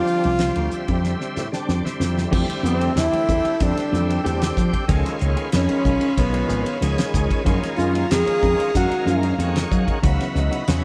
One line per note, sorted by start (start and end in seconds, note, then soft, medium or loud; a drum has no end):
0.00 0.32 D3 medium
0.00 1.06 F3 medium
0.00 0.32 G3 medium
0.00 0.33 C4 medium
0.00 0.33 D4 medium
0.00 1.05 F4 loud
0.07 hi-hat pedal medium
0.24 0.49 C2 medium
0.24 ride medium
0.39 0.70 D3 medium
0.39 0.71 G3 medium
0.39 0.71 C4 medium
0.39 0.71 F4 medium
0.39 snare medium
0.39 ride medium
0.56 0.68 D2 medium
0.56 ride medium
0.71 1.48 D3 medium
0.71 1.48 G3 medium
0.71 1.48 C4 medium
0.71 1.48 E5 medium
0.71 muted slap bass stroke soft
0.71 hi-hat pedal medium
0.88 1.13 F2 medium
0.88 kick medium
0.88 ride medium
1.04 snare soft
1.21 snare soft
1.36 1.49 A2 medium
1.36 snare medium
1.36 hi-hat pedal medium
1.52 1.82 D3 medium
1.52 1.82 G3 medium
1.52 1.83 C4 medium
1.52 1.83 D4 medium
1.52 snare medium
1.69 1.81 F2 medium
1.69 snare medium
1.83 2.30 D3 medium
1.83 2.30 G3 medium
1.83 2.30 C4 medium
1.83 2.31 E4 medium
1.83 muted slap bass stroke soft
1.83 snare medium
2.00 2.24 F2 medium
2.00 snare medium
2.00 hi-hat pedal medium
2.18 snare medium
2.31 2.45 F2 loud
2.31 2.92 D3 medium
2.31 2.52 E3 medium
2.31 2.92 G3 medium
2.31 2.52 A3 medium
2.31 2.92 C4 medium
2.31 2.52 C4 medium
2.31 2.93 E4 medium
2.31 2.52 G4 medium
2.31 4.87 A4 medium
2.31 4.87 G5 medium
2.31 4.87 E6 medium
2.31 kick loud
2.31 crash medium
2.49 muted slap bass stroke soft
2.49 ride medium
2.63 2.88 F2 medium
2.63 2.99 C4 medium
2.63 muted clean electric guitar stroke soft
2.63 hi-hat pedal medium
2.80 2.95 A3 soft
2.80 2.95 C4 soft
2.80 2.95 G4 soft
2.80 ride medium
2.95 3.09 E2 medium
2.95 3.56 D3 medium
2.95 3.56 G3 medium
2.95 3.57 C4 medium
2.95 3.57 E4 medium
2.95 3.64 E4 medium
2.95 muted clean electric guitar stroke soft
2.95 snare loud
2.95 hi-hat pedal medium
2.95 ride medium
3.12 3.27 E3 soft
3.12 3.27 A3 medium
3.12 3.27 C4 medium
3.12 3.27 G4 medium
3.12 muted slap bass stroke soft
3.12 ride medium
3.28 3.41 E2 medium
3.28 muted clean electric guitar stroke soft
3.28 kick medium
3.28 hi-hat pedal medium
3.45 muted slap bass stroke soft
3.45 muted clean electric guitar stroke soft
3.45 ride medium
3.60 3.73 F2 medium
3.60 4.21 D3 medium
3.60 4.21 G3 medium
3.60 4.21 C4 medium
3.60 4.26 D4 medium
3.60 4.21 E4 medium
3.60 kick medium
3.60 hi-hat pedal medium
3.60 ride medium
3.77 muted clean electric guitar stroke soft
3.77 snare soft
3.77 ride medium
3.92 4.17 F2 medium
3.92 4.09 E3 medium
3.92 4.08 A3 medium
3.92 4.08 C4 medium
3.92 4.07 G4 medium
3.92 snare soft
3.92 hi-hat pedal medium
4.08 muted clean electric guitar stroke soft
4.08 ride medium
4.23 4.50 E2 medium
4.23 4.84 D3 medium
4.23 4.44 E3 medium
4.23 4.85 G3 medium
4.23 4.44 A3 medium
4.23 4.85 C4 medium
4.23 4.45 C4 medium
4.23 4.44 G4 medium
4.23 4.85 G4 medium
4.23 hi-hat pedal medium
4.23 ride medium
4.42 snare loud
4.42 ride medium
4.56 4.70 F3 medium
4.56 muted clean electric guitar stroke soft
4.56 kick medium
4.56 hi-hat pedal medium
4.73 muted clean electric guitar stroke soft
4.73 muted slap bass stroke soft
4.73 kick medium
4.73 ride medium
4.87 5.01 C#2 medium
4.87 5.49 D#3 medium
4.87 5.08 F3 medium
4.87 5.49 G#3 medium
4.87 5.09 B3 medium
4.87 5.50 C#4 medium
4.87 5.09 C#4 medium
4.87 7.44 F4 medium
4.87 5.50 F4 medium
4.87 5.09 G#4 medium
4.87 7.44 C#5 medium
4.87 7.43 B5 medium
4.87 kick loud
4.87 hi-hat pedal medium
4.87 ride medium
5.06 snare soft
5.06 ride medium
5.20 5.34 C#2 medium
5.20 5.38 A#3 soft
5.20 muted clean electric guitar stroke soft
5.20 hi-hat pedal medium
5.37 5.51 B3 soft
5.37 5.52 C#4 soft
5.37 5.51 G#4 soft
5.37 ride medium
5.52 5.66 F2 medium
5.52 6.13 D#3 medium
5.52 6.14 G#3 medium
5.52 6.14 C#4 medium
5.52 6.20 C#4 medium
5.52 6.14 F4 medium
5.52 muted clean electric guitar stroke soft
5.52 snare loud
5.52 hi-hat pedal medium
5.52 ride medium
5.68 5.83 F3 medium
5.68 5.84 B3 medium
5.68 5.84 C#4 medium
5.68 5.84 G#4 medium
5.68 muted slap bass stroke soft
5.68 ride medium
5.85 5.98 B1 loud
5.85 muted clean electric guitar stroke soft
5.85 kick medium
5.85 hi-hat pedal medium
6.01 muted clean electric guitar stroke soft
6.01 ride medium
6.17 6.42 B1 medium
6.17 6.78 D#3 medium
6.17 6.78 G#3 medium
6.17 6.83 B3 medium
6.17 6.79 C#4 medium
6.17 6.79 F4 medium
6.17 kick medium
6.17 hi-hat pedal medium
6.17 ride medium
6.33 muted clean electric guitar stroke soft
6.33 ride medium
6.48 6.62 G#1 medium
6.48 6.66 F3 medium
6.48 6.65 B3 medium
6.48 6.65 C#4 medium
6.48 6.64 G#4 medium
6.48 hi-hat pedal medium
6.65 muted clean electric guitar stroke soft
6.65 ride medium
6.81 6.94 C#2 medium
6.81 7.43 D#3 medium
6.81 7.01 F3 medium
6.81 7.43 G#3 medium
6.81 7.01 B3 medium
6.81 7.02 C#4 medium
6.81 7.43 C#4 medium
6.81 7.01 G#4 medium
6.81 7.43 G#4 medium
6.81 hi-hat pedal medium
6.81 ride medium
6.98 snare loud
6.98 ride medium
7.13 7.26 C#2 medium
7.13 muted clean electric guitar stroke soft
7.13 kick medium
7.13 hi-hat pedal medium
7.29 muted clean electric guitar stroke soft
7.29 muted slap bass stroke soft
7.29 kick medium
7.29 ride medium
7.45 7.59 F#2 loud
7.45 8.07 D#3 medium
7.45 7.65 F3 medium
7.45 8.07 G#3 medium
7.45 7.65 A#3 medium
7.45 7.66 C#4 loud
7.45 8.07 C#4 medium
7.45 7.66 F4 loud
7.45 8.08 F4 medium
7.45 10.01 F5 medium
7.45 10.01 A#5 medium
7.45 kick loud
7.45 hi-hat pedal medium
7.45 ride medium
7.63 muted slap bass stroke soft
7.63 snare soft
7.63 ride medium
7.77 8.03 F#2 medium
7.77 8.12 F4 medium
7.77 muted clean electric guitar stroke soft
7.77 hi-hat pedal medium
7.93 8.09 A#3 soft
7.93 8.09 C#4 soft
7.93 8.09 F4 soft
7.93 ride medium
8.10 8.23 F2 medium
8.10 8.71 D#3 medium
8.10 8.71 G#3 medium
8.10 8.71 C#4 medium
8.10 8.72 F4 medium
8.10 8.75 G#4 medium
8.10 muted clean electric guitar stroke soft
8.10 snare loud
8.10 hi-hat pedal medium
8.10 ride medium
8.26 8.41 F3 soft
8.26 8.41 A#3 soft
8.26 8.41 C#4 medium
8.26 8.41 F4 medium
8.26 muted slap bass stroke soft
8.26 ride medium
8.43 8.55 F2 medium
8.43 kick medium
8.43 hi-hat pedal medium
8.58 muted clean electric guitar stroke soft
8.58 ride medium
8.74 8.87 F#2 medium
8.74 9.35 D#3 medium
8.74 9.35 G#3 medium
8.74 9.35 C#4 medium
8.74 9.36 F#4 medium
8.74 9.36 F5 medium
8.74 kick medium
8.74 hi-hat pedal medium
8.74 ride medium
8.90 muted slap bass stroke soft
8.90 muted clean electric guitar stroke soft
8.90 ride medium
9.05 9.31 F#2 medium
9.05 9.23 F3 medium
9.05 9.22 A#3 medium
9.05 9.22 C#4 medium
9.05 9.21 F4 medium
9.05 snare soft
9.05 hi-hat pedal medium
9.23 muted clean electric guitar stroke soft
9.23 ride medium
9.38 9.63 F2 medium
9.38 9.99 D#3 medium
9.38 9.58 F3 medium
9.38 9.99 G#3 medium
9.38 9.58 A#3 medium
9.38 9.59 C#4 medium
9.38 9.99 C#4 medium
9.38 9.59 F4 medium
9.38 10.00 F#4 medium
9.38 hi-hat pedal medium
9.38 ride medium
9.56 snare loud
9.56 ride medium
9.71 9.84 F#3 medium
9.71 muted clean electric guitar stroke soft
9.71 kick medium
9.71 hi-hat pedal medium
9.87 muted clean electric guitar stroke soft
9.87 muted slap bass stroke soft
9.87 kick medium
9.87 ride soft
10.03 10.16 C#2 loud
10.03 10.64 C#3 medium
10.03 10.22 E3 medium
10.03 10.64 F#3 medium
10.03 10.23 B3 medium
10.03 10.64 B3 medium
10.03 10.23 D#4 medium
10.03 10.64 E4 medium
10.03 10.23 F#4 medium
10.03 10.84 D#5 medium
10.03 10.84 E5 medium
10.03 10.84 B5 medium
10.03 kick loud
10.03 hi-hat pedal medium
10.03 ride medium
10.21 snare soft
10.21 ride medium
10.35 10.48 C#2 medium
10.35 muted clean electric guitar stroke soft
10.35 snare soft
10.35 hi-hat pedal medium
10.51 10.66 B3 soft
10.51 10.66 D#4 medium
10.51 10.67 F#4 medium
10.51 ride medium
10.67 10.80 E2 medium
10.67 10.84 C#3 medium
10.67 10.84 F#3 medium
10.67 10.84 B3 medium
10.67 10.84 C#4 medium
10.67 muted clean electric guitar stroke soft
10.67 snare loud
10.67 hi-hat pedal medium
10.67 ride medium